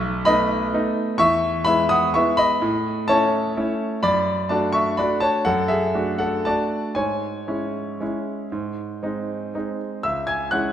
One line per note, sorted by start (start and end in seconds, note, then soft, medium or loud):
0.00 0.24 B1 medium
0.00 0.21 E5 loud
0.00 0.25 C#6 loud
0.25 0.69 A3 medium
0.25 0.69 B3 medium
0.25 0.70 D#4 medium
0.25 1.16 D#5 loud
0.25 1.19 B5 loud
0.73 1.16 A3 medium
0.73 1.16 B3 medium
0.73 1.16 D#4 medium
1.18 1.65 E2 medium
1.18 1.63 E5 loud
1.18 1.66 C#6 loud
1.65 2.10 G#3 medium
1.65 2.11 B3 medium
1.65 2.11 E4 medium
1.65 1.89 E5 medium
1.65 1.90 B5 loud
1.89 2.13 F#5 medium
1.89 2.14 D#6 loud
2.14 2.58 G#3 medium
2.14 2.58 B3 medium
2.14 2.58 E4 medium
2.14 2.37 E5 medium
2.14 2.38 C#6 loud
2.37 3.04 D#5 medium
2.37 3.08 B5 loud
2.62 3.07 A2 medium
3.08 3.53 A3 medium
3.08 3.53 C#4 medium
3.08 3.53 E4 medium
3.08 3.99 C#5 medium
3.08 4.03 A5 loud
3.57 3.99 A3 medium
3.57 3.99 C#4 medium
3.57 3.99 E4 medium
4.03 4.48 F#2 medium
4.03 4.47 D5 loud
4.03 4.50 B5 loud
4.49 4.94 A3 medium
4.49 4.94 D4 medium
4.49 4.95 F#4 medium
4.49 4.73 D5 medium
4.49 4.74 A5 medium
4.73 4.97 E5 medium
4.73 4.98 C#6 loud
4.97 5.42 A3 soft
4.97 5.42 D4 medium
4.97 5.42 F#4 medium
4.97 5.21 D5 medium
4.97 5.22 B5 medium
5.20 5.44 C#5 medium
5.20 5.45 A5 loud
5.45 5.92 F#2 medium
5.45 5.68 A4 medium
5.45 5.69 F#5 loud
5.68 6.16 G#4 medium
5.68 6.19 E5 medium
5.94 6.41 A3 medium
5.94 6.41 D4 soft
5.94 6.41 F#4 medium
6.18 6.43 A4 medium
6.18 6.45 F#5 medium
6.45 6.92 A3 soft
6.45 6.92 D4 soft
6.45 6.92 F#4 medium
6.45 6.93 D5 medium
6.45 6.96 A5 medium
6.95 7.46 G#2 medium
6.95 9.77 C#5 medium
6.95 9.80 G#5 medium
7.47 7.97 G#3 soft
7.47 7.97 C#4 medium
7.47 7.97 E4 soft
8.00 8.48 G#3 soft
8.00 8.49 C#4 soft
8.00 8.49 E4 soft
8.52 9.00 G#2 medium
9.03 9.51 G#3 soft
9.03 9.51 C4 soft
9.03 9.51 D#4 medium
9.55 10.01 G#3 soft
9.55 10.01 C4 soft
9.55 10.02 D#4 medium
10.03 10.51 C#2 medium
10.03 10.27 E5 medium
10.03 10.28 E6 medium
10.27 10.51 G#5 medium
10.27 10.52 G#6 medium
10.51 10.72 G#3 soft
10.51 10.72 C#4 medium
10.51 10.72 E4 medium
10.51 10.72 F#5 medium
10.51 10.72 F#6 medium